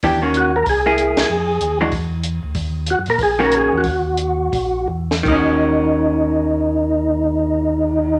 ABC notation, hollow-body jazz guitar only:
X:1
M:4/4
L:1/8
Q:"Swing" 1/4=180
K:Ebdor
V:1 name="Hollow-body jazz guitar"
[_F,_C=D=G] [E,B,_D_G]2 z2 [B,=E^G]3 | z3 [_F,A,=DG] z4 | z4 z [E,B,DG]3 | z8 |
[E,B,DG]8- | [E,B,DG]8 |]